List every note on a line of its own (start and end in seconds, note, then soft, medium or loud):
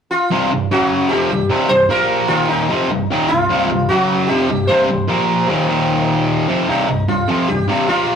0.11 0.48 F4 medium
0.31 0.51 C2 medium
0.31 0.51 G2 medium
0.31 0.51 C3 loud
0.52 0.68 C2 soft
0.52 0.68 G2 medium
0.71 1.10 F#2 loud
0.71 1.11 C#3 loud
0.71 1.12 F#3 medium
0.71 1.08 F#4 medium
1.09 1.30 F2 medium
1.09 1.31 C3 medium
1.09 1.31 F3 medium
1.09 1.47 G4 medium
1.30 1.47 C2 medium
1.30 1.47 G2 medium
1.50 1.68 C2 medium
1.50 1.68 G2 medium
1.50 1.70 C3 medium
1.69 1.86 C2 medium
1.69 1.86 G2 medium
1.69 1.88 C5 loud
1.89 2.28 A#2 medium
1.89 2.29 F3 loud
1.89 2.30 A#3 loud
1.89 2.32 A#4 medium
2.28 2.69 D#2 loud
2.28 2.69 A#2 loud
2.28 2.70 D#3 loud
2.28 2.48 F4 medium
2.49 3.25 D#4 medium
2.69 2.89 F2 medium
2.69 2.90 C3 medium
2.69 2.90 F3 loud
2.90 3.06 C2 medium
2.90 3.06 G2 medium
3.10 3.30 D#2 medium
3.10 3.30 A#2 medium
3.10 3.30 D#3 medium
3.28 3.46 C2 medium
3.28 3.46 G2 medium
3.28 3.88 F4 medium
3.49 3.69 C2 medium
3.49 3.69 G2 loud
3.49 3.70 C3 loud
3.71 3.86 C2 medium
3.71 3.86 G2 medium
3.89 4.29 F#2 medium
3.89 4.29 C#3 loud
3.89 4.30 F#3 loud
3.89 4.27 F#4 medium
4.27 4.49 F2 medium
4.27 4.49 C3 loud
4.27 4.49 F3 medium
4.27 4.69 G4 medium
4.50 4.66 C2 medium
4.50 4.66 G2 medium
4.67 4.88 C2 medium
4.67 4.89 G2 medium
4.67 4.89 C3 medium
4.67 6.23 C5 medium
4.90 5.05 C2 medium
4.90 5.05 G2 medium
5.08 5.48 A#2 medium
5.08 5.48 F3 medium
5.08 5.49 A#3 loud
5.48 5.67 D#2 medium
5.48 5.68 A#2 medium
5.48 5.69 D#3 loud
5.68 6.47 D#2 loud
5.68 6.48 A#2 medium
5.68 6.48 D#3 loud
6.47 6.67 F2 medium
6.47 6.68 C3 medium
6.47 6.68 F3 medium
6.68 6.87 C2 medium
6.68 6.87 G2 medium
6.68 6.88 C3 medium
6.68 7.08 D#4 medium
6.88 7.04 C2 medium
6.88 7.04 G2 medium
7.08 7.24 C2 medium
7.08 7.24 G2 medium
7.08 7.48 F4 medium
7.28 7.48 F2 medium
7.28 7.48 C3 medium
7.28 7.48 F3 loud
7.48 7.65 C2 medium
7.48 7.65 G2 medium
7.48 7.88 G4 medium
7.68 7.88 C2 medium
7.68 7.89 G2 medium
7.68 7.90 C3 medium
7.88 8.15 A#2 medium
7.88 8.15 F3 medium
7.88 8.15 A#3 medium
7.88 8.15 F4 medium